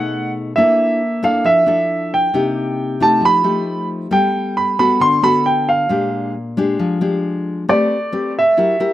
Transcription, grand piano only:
0.00 0.30 F#5 loud
0.56 1.24 E5 medium
1.24 1.46 F5 medium
1.46 2.14 E5 medium
2.14 3.04 G5 medium
3.02 3.24 A5 medium
3.25 3.86 B5 loud
4.13 4.53 G5 medium
4.57 4.78 B5 medium
4.79 5.01 B5 medium
5.01 5.21 C6 loud
5.24 5.46 B5 loud
5.46 5.68 G5 medium
5.69 6.30 F5 medium
7.69 8.31 D5 medium
8.39 8.93 E5 medium

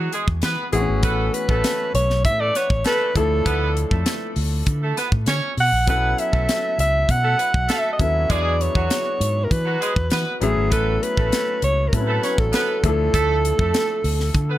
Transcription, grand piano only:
0.00 0.69 E3 medium
0.00 0.69 G#3 medium
0.00 0.69 B3 medium
0.00 0.70 D4 medium
0.00 0.70 F#4 medium
0.72 3.11 E3 medium
0.72 3.11 A3 medium
0.72 3.12 B3 medium
0.72 0.80 C4 medium
0.72 3.12 F#4 medium
0.81 3.15 C#4 medium
3.15 5.53 F3 medium
3.15 5.53 A3 medium
3.15 5.54 D4 medium
3.15 5.54 E4 medium
3.15 5.54 A4 medium
5.86 7.95 F#3 medium
5.86 7.95 B3 medium
5.86 7.95 C#4 medium
5.86 7.96 E4 medium
5.86 7.96 A4 medium
7.99 8.28 F#3 medium
7.99 8.28 B3 soft
7.99 8.30 C#4 medium
7.99 8.29 E4 medium
7.99 8.30 A4 medium
8.29 10.37 F#3 medium
8.29 10.37 B3 medium
8.29 10.38 D4 medium
8.29 10.38 E4 medium
8.29 10.38 G#4 medium
10.40 11.89 F#3 medium
10.40 11.90 A3 medium
10.40 11.89 B3 medium
10.40 11.90 C#4 medium
10.40 11.90 E4 medium
11.93 12.83 F#3 medium
11.93 12.84 B3 soft
11.93 12.00 C4 soft
11.93 12.84 E4 soft
11.93 12.84 A4 medium
12.00 12.87 C#4 medium
12.83 14.58 F3 medium
12.83 14.58 A3 medium
12.83 14.58 D4 medium
12.83 14.58 E4 medium
12.83 14.58 A4 medium

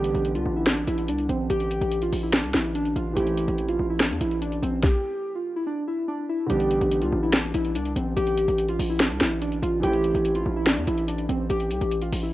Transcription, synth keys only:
0.00 0.32 G4 loud
0.35 0.52 F4 medium
0.56 0.65 E4 medium
0.67 0.84 D4 medium
0.88 1.04 E4 medium
1.09 1.25 D4 medium
1.29 1.46 C4 medium
1.50 1.99 G4 loud
2.02 2.19 F4 medium
2.23 2.31 E4 medium
2.33 2.50 D4 medium
2.54 2.71 E4 medium
2.75 2.92 D4 medium
2.96 3.12 F4 medium
3.16 3.65 G4 loud
3.68 3.85 F4 medium
3.90 3.98 E4 medium
4.00 4.17 D4 medium
4.21 4.38 E4 medium
4.42 4.58 D4 medium
4.62 4.79 C4 medium
4.83 5.32 G4 loud
5.35 5.52 F4 medium
5.56 5.65 E4 medium
5.67 5.83 D4 medium
5.88 6.04 E4 medium
6.08 6.25 D4 medium
6.29 6.46 E4 medium
6.50 6.99 G4 loud
7.02 7.19 F4 medium
7.23 7.31 E4 medium
7.33 7.50 D4 medium
7.54 7.71 E4 medium
7.75 7.92 D4 medium
7.96 8.13 C4 medium
8.16 8.65 G4 loud
8.69 8.86 F4 medium
8.90 8.98 E4 medium
9.00 9.17 D4 medium
9.21 9.38 E4 medium
9.42 9.58 D4 medium
9.62 9.79 F4 medium
9.83 10.32 G4 loud
10.35 10.52 F4 medium
10.56 10.65 E4 medium
10.67 10.83 D4 medium
10.88 11.04 E4 medium
11.08 11.25 D4 medium
11.29 11.46 C4 medium
11.50 11.99 G4 loud
12.02 12.19 F4 medium
12.23 12.31 E4 medium

